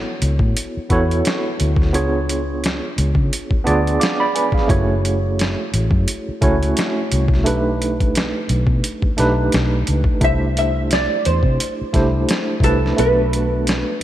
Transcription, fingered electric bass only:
0, 0, Header, 1, 3, 480
1, 0, Start_track
1, 0, Tempo, 689655
1, 1345, Time_signature, 4, 2, 24, 8
1, 9766, End_track
2, 0, Start_track
2, 0, Title_t, "Fingered electric bass"
2, 0, Program_c, 0, 33
2, 153, Note_on_c, 0, 37, 93
2, 271, Note_off_c, 0, 37, 0
2, 279, Note_on_c, 0, 45, 78
2, 369, Note_off_c, 0, 45, 0
2, 633, Note_on_c, 0, 40, 88
2, 838, Note_off_c, 0, 40, 0
2, 1118, Note_on_c, 0, 38, 98
2, 1357, Note_off_c, 0, 38, 0
2, 1357, Note_on_c, 0, 37, 108
2, 1943, Note_off_c, 0, 37, 0
2, 2075, Note_on_c, 0, 37, 88
2, 2192, Note_off_c, 0, 37, 0
2, 2196, Note_on_c, 0, 49, 90
2, 2287, Note_off_c, 0, 49, 0
2, 2555, Note_on_c, 0, 38, 76
2, 2759, Note_off_c, 0, 38, 0
2, 3271, Note_on_c, 0, 30, 104
2, 3860, Note_off_c, 0, 30, 0
2, 3993, Note_on_c, 0, 33, 90
2, 4111, Note_off_c, 0, 33, 0
2, 4117, Note_on_c, 0, 42, 95
2, 4208, Note_off_c, 0, 42, 0
2, 4472, Note_on_c, 0, 37, 76
2, 4678, Note_off_c, 0, 37, 0
2, 4957, Note_on_c, 0, 36, 91
2, 5195, Note_off_c, 0, 36, 0
2, 5195, Note_on_c, 0, 35, 101
2, 5782, Note_off_c, 0, 35, 0
2, 5913, Note_on_c, 0, 35, 102
2, 6031, Note_off_c, 0, 35, 0
2, 6037, Note_on_c, 0, 47, 91
2, 6128, Note_off_c, 0, 47, 0
2, 6396, Note_on_c, 0, 35, 84
2, 6600, Note_off_c, 0, 35, 0
2, 6640, Note_on_c, 0, 35, 95
2, 6842, Note_off_c, 0, 35, 0
2, 6880, Note_on_c, 0, 37, 77
2, 6995, Note_off_c, 0, 37, 0
2, 7112, Note_on_c, 0, 36, 100
2, 7700, Note_off_c, 0, 36, 0
2, 7841, Note_on_c, 0, 40, 88
2, 7955, Note_off_c, 0, 40, 0
2, 7959, Note_on_c, 0, 48, 96
2, 8049, Note_off_c, 0, 48, 0
2, 8313, Note_on_c, 0, 36, 81
2, 8518, Note_off_c, 0, 36, 0
2, 8778, Note_on_c, 0, 36, 83
2, 8989, Note_off_c, 0, 36, 0
2, 9038, Note_on_c, 0, 35, 94
2, 9624, Note_off_c, 0, 35, 0
2, 9766, End_track
3, 0, Start_track
3, 0, Title_t, "Muted fingered electric bass strokes"
3, 537, Note_on_c, 9, 29, 49
3, 606, Note_off_c, 9, 29, 0
3, 2446, Note_on_c, 9, 29, 51
3, 2515, Note_off_c, 9, 29, 0
3, 4375, Note_on_c, 9, 29, 46
3, 4444, Note_off_c, 9, 29, 0
3, 6288, Note_on_c, 9, 29, 50
3, 6357, Note_off_c, 9, 29, 0
3, 8223, Note_on_c, 9, 29, 44
3, 8292, Note_off_c, 9, 29, 0
3, 9766, End_track
0, 0, End_of_file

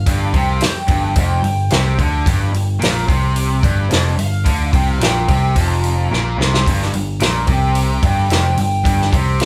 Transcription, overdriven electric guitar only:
0, 0, Header, 1, 3, 480
1, 0, Start_track
1, 0, Key_signature, -2, "minor"
1, 0, Tempo, 548446
1, 58, Time_signature, 4, 2, 24, 8
1, 8272, End_track
2, 0, Start_track
2, 0, Title_t, "Overdriven electric guitar"
2, 0, Program_c, 0, 29
2, 59, Note_on_c, 0, 43, 102
2, 291, Note_off_c, 0, 43, 0
2, 291, Note_on_c, 0, 48, 86
2, 527, Note_off_c, 0, 48, 0
2, 765, Note_on_c, 0, 43, 97
2, 1004, Note_off_c, 0, 43, 0
2, 1016, Note_on_c, 0, 41, 91
2, 1247, Note_off_c, 0, 41, 0
2, 1251, Note_on_c, 0, 43, 77
2, 1446, Note_off_c, 0, 43, 0
2, 1495, Note_on_c, 0, 48, 104
2, 1729, Note_off_c, 0, 48, 0
2, 1743, Note_on_c, 0, 50, 100
2, 1973, Note_off_c, 0, 50, 0
2, 1978, Note_on_c, 0, 43, 107
2, 2204, Note_off_c, 0, 43, 0
2, 2215, Note_on_c, 0, 43, 65
2, 2408, Note_off_c, 0, 43, 0
2, 2444, Note_on_c, 0, 46, 100
2, 2683, Note_off_c, 0, 46, 0
2, 2690, Note_on_c, 0, 48, 97
2, 3166, Note_off_c, 0, 48, 0
2, 3174, Note_on_c, 0, 43, 104
2, 3408, Note_off_c, 0, 43, 0
2, 3412, Note_on_c, 0, 41, 92
2, 3647, Note_off_c, 0, 41, 0
2, 3652, Note_on_c, 0, 43, 67
2, 3846, Note_off_c, 0, 43, 0
2, 3898, Note_on_c, 0, 50, 93
2, 4130, Note_off_c, 0, 50, 0
2, 4141, Note_on_c, 0, 48, 82
2, 4365, Note_off_c, 0, 48, 0
2, 4369, Note_on_c, 0, 46, 95
2, 4606, Note_off_c, 0, 46, 0
2, 4626, Note_on_c, 0, 48, 95
2, 4854, Note_off_c, 0, 48, 0
2, 4856, Note_on_c, 0, 41, 92
2, 5330, Note_off_c, 0, 41, 0
2, 5350, Note_on_c, 0, 46, 92
2, 5577, Note_off_c, 0, 46, 0
2, 5582, Note_on_c, 0, 48, 92
2, 5813, Note_off_c, 0, 48, 0
2, 5833, Note_on_c, 0, 43, 95
2, 6059, Note_off_c, 0, 43, 0
2, 6068, Note_on_c, 0, 43, 60
2, 6256, Note_off_c, 0, 43, 0
2, 6302, Note_on_c, 0, 46, 95
2, 6534, Note_off_c, 0, 46, 0
2, 6539, Note_on_c, 0, 48, 100
2, 7012, Note_off_c, 0, 48, 0
2, 7019, Note_on_c, 0, 43, 106
2, 7253, Note_off_c, 0, 43, 0
2, 7260, Note_on_c, 0, 41, 85
2, 7493, Note_off_c, 0, 41, 0
2, 7506, Note_on_c, 0, 43, 61
2, 7695, Note_off_c, 0, 43, 0
2, 7734, Note_on_c, 0, 43, 91
2, 7970, Note_off_c, 0, 43, 0
2, 7982, Note_on_c, 0, 48, 93
2, 8215, Note_off_c, 0, 48, 0
2, 8272, End_track
3, 0, Start_track
3, 0, Title_t, "Muted overdriven electric guitar strokes"
3, 532, Note_on_c, 9, 29, 52
3, 619, Note_off_c, 9, 29, 0
3, 8222, Note_on_c, 9, 29, 53
3, 8272, Note_off_c, 9, 29, 0
3, 8272, End_track
0, 0, End_of_file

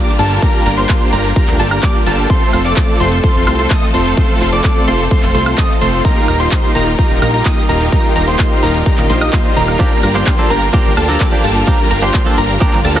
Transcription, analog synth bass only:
0, 0, Header, 1, 2, 480
1, 0, Start_track
1, 0, Key_signature, -2, "minor"
1, 0, Tempo, 468750
1, 434, Time_signature, 4, 2, 24, 8
1, 13312, End_track
2, 0, Start_track
2, 0, Title_t, "Analog synth bass"
2, 0, Program_c, 0, 38
2, 195, Note_on_c, 0, 31, 96
2, 397, Note_off_c, 0, 31, 0
2, 675, Note_on_c, 0, 31, 104
2, 877, Note_off_c, 0, 31, 0
2, 1155, Note_on_c, 0, 31, 99
2, 1357, Note_off_c, 0, 31, 0
2, 1515, Note_on_c, 0, 38, 85
2, 1616, Note_off_c, 0, 38, 0
2, 1635, Note_on_c, 0, 31, 84
2, 1837, Note_off_c, 0, 31, 0
2, 2115, Note_on_c, 0, 31, 97
2, 2317, Note_off_c, 0, 31, 0
2, 2594, Note_on_c, 0, 29, 106
2, 2797, Note_off_c, 0, 29, 0
2, 3074, Note_on_c, 0, 29, 100
2, 3277, Note_off_c, 0, 29, 0
2, 3434, Note_on_c, 0, 29, 99
2, 3535, Note_off_c, 0, 29, 0
2, 3554, Note_on_c, 0, 36, 94
2, 3757, Note_off_c, 0, 36, 0
2, 4034, Note_on_c, 0, 29, 94
2, 4237, Note_off_c, 0, 29, 0
2, 4515, Note_on_c, 0, 29, 103
2, 4717, Note_off_c, 0, 29, 0
2, 4995, Note_on_c, 0, 29, 93
2, 5197, Note_off_c, 0, 29, 0
2, 5354, Note_on_c, 0, 29, 100
2, 5455, Note_off_c, 0, 29, 0
2, 5474, Note_on_c, 0, 36, 96
2, 5677, Note_off_c, 0, 36, 0
2, 5954, Note_on_c, 0, 29, 93
2, 6156, Note_off_c, 0, 29, 0
2, 6434, Note_on_c, 0, 27, 104
2, 6637, Note_off_c, 0, 27, 0
2, 6914, Note_on_c, 0, 27, 97
2, 7117, Note_off_c, 0, 27, 0
2, 7274, Note_on_c, 0, 27, 102
2, 7376, Note_off_c, 0, 27, 0
2, 7394, Note_on_c, 0, 34, 96
2, 7597, Note_off_c, 0, 34, 0
2, 7874, Note_on_c, 0, 27, 96
2, 8077, Note_off_c, 0, 27, 0
2, 8354, Note_on_c, 0, 27, 108
2, 8557, Note_off_c, 0, 27, 0
2, 8834, Note_on_c, 0, 27, 97
2, 9037, Note_off_c, 0, 27, 0
2, 9194, Note_on_c, 0, 27, 99
2, 9296, Note_off_c, 0, 27, 0
2, 9314, Note_on_c, 0, 34, 96
2, 9517, Note_off_c, 0, 34, 0
2, 9794, Note_on_c, 0, 27, 91
2, 9997, Note_off_c, 0, 27, 0
2, 10274, Note_on_c, 0, 31, 101
2, 10477, Note_off_c, 0, 31, 0
2, 10754, Note_on_c, 0, 31, 100
2, 10956, Note_off_c, 0, 31, 0
2, 11114, Note_on_c, 0, 31, 97
2, 11215, Note_off_c, 0, 31, 0
2, 11234, Note_on_c, 0, 38, 95
2, 11437, Note_off_c, 0, 38, 0
2, 11715, Note_on_c, 0, 31, 93
2, 11917, Note_off_c, 0, 31, 0
2, 12195, Note_on_c, 0, 31, 107
2, 12397, Note_off_c, 0, 31, 0
2, 12674, Note_on_c, 0, 31, 103
2, 12877, Note_off_c, 0, 31, 0
2, 13034, Note_on_c, 0, 31, 97
2, 13136, Note_off_c, 0, 31, 0
2, 13155, Note_on_c, 0, 38, 95
2, 13312, Note_off_c, 0, 38, 0
2, 13312, End_track
0, 0, End_of_file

